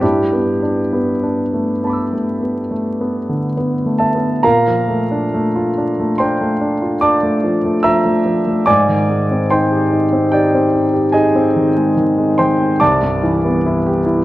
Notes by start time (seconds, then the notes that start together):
0.01 G2 D4 E4 G4
0.33 B3
0.62 D4
0.93 B3
1.23 D4
1.53 A3
1.84 B3 A5 B5
1.90 D6 E6
2.13 A3
2.41 B3
2.71 A3
3.01 B3
3.29 D3
3.57 B3
3.86 A3
3.99 A4 E5 A5
4.15 B3
4.43 A#2 A#4 F5 A#5
4.68 F3
4.88 A3
5.11 D4
5.34 A3
5.56 F4
5.77 D4
5.99 A3
6.18 D4 C5 G5 C6
6.41 A3
6.61 D4
6.82 F4
7.01 D4 D5 A5 D6
7.23 A3
7.44 F3
7.64 A3
7.83 F3 E5 A#5 E6
8.06 A3
8.26 F3
8.47 A3
8.66 G#2 D5 G#5 D6
8.89 D#3
9.09 G#3
9.31 C4
9.50 D#4 C5 G5 C6
9.72 G4
9.91 D#4
10.13 C4
10.32 D#4 G4 D5 G5
10.54 C4
10.74 D#4
10.94 G4
11.12 D#4 G#4 D#5 G#5
11.35 C4
11.56 D#3
11.77 G#3
11.97 D#3
12.18 G#3
12.38 D#3 C5 G5 C6
12.59 G#3
12.80 C2 D5 A5 D6
13.02 G2
13.23 E3
13.45 B3
13.66 E4
13.86 G4
14.06 E4